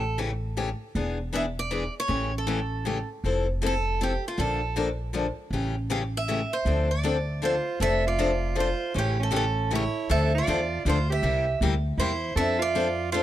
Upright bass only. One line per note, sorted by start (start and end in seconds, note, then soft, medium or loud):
0.00 0.72 A1 medium
0.95 1.86 E1 medium
2.09 3.00 A1 medium
3.24 4.15 F1 medium
4.38 5.29 A#1 medium
5.50 6.43 A1 medium
6.65 7.57 D2 medium
7.80 8.72 F1 medium
8.95 9.86 A1 medium
10.10 10.40 D2 loud
10.47 10.80 E2 medium
10.85 11.17 D2 medium
11.22 11.53 C2 medium
11.61 11.93 D2 medium
11.97 12.31 E2 medium
12.36 13.23 F2 medium